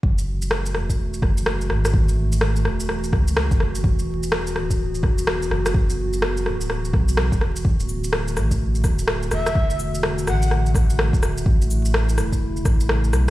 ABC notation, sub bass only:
X:1
M:4/4
L:1/16
Q:"Swing 16ths" 1/4=126
K:F#m
V:1 name="Sub bass" clef=bass
F,,,6 E,,,4 F,,,4 G,,,2- | G,,,6 E,,,4 C,,3 F,,,3 | E,,,6 D,,,4 E,,,4 F,,,2- | F,,,6 D,,,4 B,,,3 E,,,3 |
D,,,6 A,,,4 D,,,4 E,,,2- | E,,,6 A,,,4 A,,,3 D,,,3 | A,,,6 E,,,4 A,,,4 B,,,2 |]